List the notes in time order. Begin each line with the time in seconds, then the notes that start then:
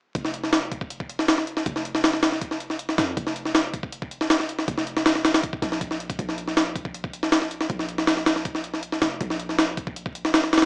0.15 F1, kick, closed hi-hat
0.25 snare
0.34 closed hi-hat
0.44 snare
0.53 snare, closed hi-hat
0.72 kick, closed hi-hat
0.81 kick
0.90 closed hi-hat
1.00 kick
1.09 closed hi-hat
1.19 snare
1.28 snare, closed hi-hat
1.38 snare
1.47 closed hi-hat
1.57 snare
1.66 F1, kick, closed hi-hat
1.76 snare
1.85 closed hi-hat
1.95 snare
2.04 snare, open hi-hat
2.13 snare
2.23 snare, closed hi-hat
2.32 snare
2.42 kick, closed hi-hat
2.51 snare
2.60 closed hi-hat
2.70 snare
2.79 closed hi-hat
2.89 snare
2.98 F2, snare, closed hi-hat
3.17 F1, kick, closed hi-hat
3.27 snare
3.36 closed hi-hat
3.45 snare
3.55 snare, closed hi-hat
3.74 kick, closed hi-hat
3.83 kick
3.92 closed hi-hat
4.02 kick
4.11 closed hi-hat
4.21 snare
4.30 snare, closed hi-hat
4.40 snare
4.49 closed hi-hat
4.59 snare
4.68 F1, kick, closed hi-hat
4.78 snare
4.87 closed hi-hat
4.97 snare
5.06 snare, open hi-hat
5.15 snare
5.25 snare, closed hi-hat
5.34 snare, closed hi-hat
5.43 kick, closed hi-hat
5.53 kick
5.62 A#1, snare, closed hi-hat
5.72 snare
5.81 kick, closed hi-hat
5.91 snare
6.00 closed hi-hat
6.10 kick, closed hi-hat
6.19 A#1, kick, closed hi-hat
6.29 snare
6.38 closed hi-hat
6.48 snare
6.57 snare, closed hi-hat
6.76 kick, closed hi-hat
6.85 kick
6.94 closed hi-hat
7.04 kick
7.13 closed hi-hat
7.23 snare
7.32 snare, closed hi-hat
7.42 snare
7.51 closed hi-hat
7.61 snare
7.70 A#1, kick, closed hi-hat
7.79 snare
7.89 closed hi-hat
7.98 snare
8.07 snare, open hi-hat
8.17 snare
8.26 snare, closed hi-hat
8.36 snare
8.45 kick, closed hi-hat
8.55 snare
8.64 closed hi-hat
8.74 snare
8.83 closed hi-hat
8.92 snare
9.02 F1, snare, closed hi-hat
9.21 A#1, kick, closed hi-hat
9.30 snare
9.40 closed hi-hat
9.49 snare
9.59 snare, closed hi-hat
9.77 kick, closed hi-hat
9.87 kick
9.96 closed hi-hat
10.06 kick
10.15 closed hi-hat
10.25 snare
10.34 snare, closed hi-hat
10.44 snare
10.53 snare, closed hi-hat
10.58 snare, closed hi-hat
10.62 snare, closed hi-hat